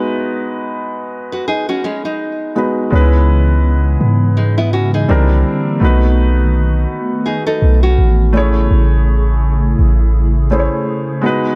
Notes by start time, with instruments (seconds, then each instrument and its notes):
Already playing: grand piano G#3 B3 D#4 F#4 B4
1.32 nylon-string guitar F#4 B4
1.48 nylon-string guitar D#4 G#4
1.69 nylon-string guitar C#4 F#4
1.84 nylon-string guitar G#3 C#4
2.05 nylon-string guitar G#3 D#4
2.55 grand piano G#3 B3 D#4 F#4 B4
2.90 808-style bass C#2, analog synth pad C#3 E3 G#3 B3, grand piano G#3 B3 C#4 D#4
2.95 grand piano B4
3.01 grand piano E4
4.01 808-style bass G#2
4.37 nylon-string guitar G#3 D#4
4.58 nylon-string guitar B3 E4
4.73 nylon-string guitar C#4 F#4
4.94 nylon-string guitar D#4 G#4
5.08 808-style bass C2, analog synth pad D3 A#3 C4, grand piano G3 C4 D4 E4 A#4
5.80 808-style bass B1, analog synth pad D#3 A3 B3 F#4, grand piano A3 B3 D#4 F#4
5.84 grand piano B4
7.26 nylon-string guitar D#4 G#4
7.47 nylon-string guitar D#4 A4
7.62 808-style bass B1
7.83 nylon-string guitar C#4 F#4
7.98 808-style bass A1
8.33 analog synth pad C#3 A3 E4 G#4, grand piano A3 C#4 E4 G#4
8.37 grand piano C#5
8.71 808-style bass A1
9.79 808-style bass A1
10.51 grand piano A3 C#4 E4 G#4 C5
10.59 grand piano C#5
11.22 analog synth pad D#3 B3 F#4, grand piano G#3 B3 D#4 F#4
11.26 grand piano B4